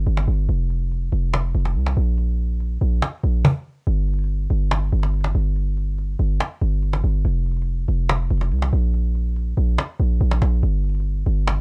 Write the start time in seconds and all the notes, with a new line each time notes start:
0.07 G1, cajon slap
0.17 cajon slap
0.28 G1
0.49 F1, cajon slap
0.70 cajon slap
0.91 cajon slap
1.12 F1, cajon slap
1.33 cajon slap
1.54 F1, cajon slap
1.60 cajon slap
1.65 cajon slap
1.70 cajon slap
1.76 C2
1.86 cajon slap
1.97 A#1, cajon slap
2.18 cajon slap
2.60 cajon slap
2.81 A#1, cajon slap
3.02 cajon slap
3.23 A#1, cajon slap
3.45 cajon bass, cajon slap
3.87 G1, cajon slap
4.08 cajon slap
4.13 cajon slap
4.19 cajon slap
4.24 cajon slap
4.50 G1, cajon slap
4.71 cajon slap
4.93 G1, cajon slap
5.00 cajon slap
5.03 cajon slap
5.07 cajon slap
5.14 cajon slap
5.21 cajon slap
5.24 cajon slap
5.28 cajon slap
5.35 G1, cajon slap
5.56 cajon slap
5.77 cajon slap
5.98 cajon slap
6.19 G1, cajon slap
6.40 cajon slap
6.62 G1, cajon slap
6.83 cajon slap
6.93 cajon slap
7.04 G1
7.25 F1, cajon slap
7.46 cajon slap
7.51 cajon slap
7.57 cajon slap
7.62 cajon slap
7.88 F1, cajon slap
8.09 cajon slap
8.31 F1, cajon slap
8.38 cajon slap
8.41 cajon slap
8.45 cajon slap
8.52 C2, cajon slap
8.59 cajon slap
8.62 cajon slap
8.66 cajon slap
8.73 A#1, cajon slap
8.94 cajon slap
9.15 cajon slap
9.36 cajon slap
9.57 A#1
9.78 cajon slap
10.00 A#1, cajon slap
10.21 A#1, cajon slap
10.31 cajon slap
10.42 A#1, cajon slap
10.63 G1, cajon slap
10.84 cajon slap
10.89 cajon slap
10.95 cajon slap
11.00 cajon slap
11.26 G1, cajon slap
11.47 cajon slap